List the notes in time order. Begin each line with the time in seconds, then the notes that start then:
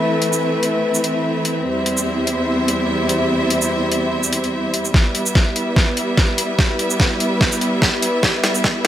Already playing: E3 A3 C4 E4 B4 E5
0.22 closed hi-hat
0.33 shaker
0.63 closed hi-hat
0.94 shaker
1.04 closed hi-hat
1.45 closed hi-hat
1.65 E2 G3 E4 C5 E5
1.86 closed hi-hat
1.97 shaker
2.27 closed hi-hat
2.68 closed hi-hat
3.09 closed hi-hat
3.50 closed hi-hat
3.62 shaker
3.92 closed hi-hat
4.23 shaker
4.33 closed hi-hat
4.44 closed hi-hat
4.74 closed hi-hat
4.85 shaker
4.94 G3 B3 E4 B4 E5, kick, snare
5.15 closed hi-hat
5.26 shaker
5.35 kick, snare
5.56 closed hi-hat
5.76 kick, snare
5.97 closed hi-hat
6.17 kick, snare
6.38 open hi-hat
6.59 kick, snare
6.79 closed hi-hat
6.90 shaker
7.00 kick, snare
7.20 closed hi-hat
7.41 kick, snare
7.52 shaker
7.61 closed hi-hat
7.82 kick, snare
8.02 open hi-hat
8.23 kick, snare
8.44 snare, closed hi-hat
8.55 shaker
8.64 kick, snare